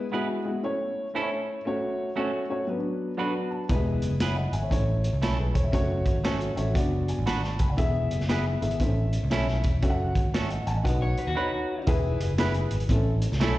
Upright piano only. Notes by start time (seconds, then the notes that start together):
0.12 G#3 B3 E4 F#4
0.44 G#3 B3 E4 F#4
0.63 A3 C#4 E4 C#5
1.14 A3 C#4 E4 C5
1.22 C#5
1.65 A3 C#4 F#4 C#5
2.16 A3 C#4 F#4 C#5
2.49 A3 C#4 F#4 C#5
2.67 F#3 B3 C#4 B4
2.74 D4
3.17 F#3 B3 D4 A4 F#5
3.25 B4
3.51 A5
3.69 G3 B3 E4 B4
3.75 G#3
4.20 C#5 E5
4.36 D#5 F#5
4.53 E5 G#5
4.62 C#5 E5
4.69 A3 C#4 E4 C#5
5.38 G#4 B4
5.54 A4 C#5
5.64 C#5 E5
5.72 A3 C#4 F#4 C#5
6.24 A3 C#4 F#4 C#5
6.56 A3 C#4 F#4 C#5 E5
6.74 B3 D4 F#4 D5 F#5
7.09 G#5
7.27 A5
7.43 A5 C#6
7.60 G#5 B5
7.69 D5 F#5
7.77 B3 E4 G#4 E5
8.28 B3 E4 G#4 E5
8.61 B3 E4 G#4 E5
8.80 C4 E4 A4 E5
8.87 C#4
9.30 C#4 E4 A4 E5
9.82 C#4 F#4 A4 E5
9.90 F#5
10.50 D#5 F#5
10.67 F#5 G#5 A5
10.75 D#5 F#5
10.83 D#4 F#4 B4 F#5
11.36 D#4 F#4 B4 C#5 B5
11.87 E4 G#4 B4
12.38 E4 G#4 B4
12.89 C4 E4 A4
12.95 C#4
13.40 C#4 E4 A4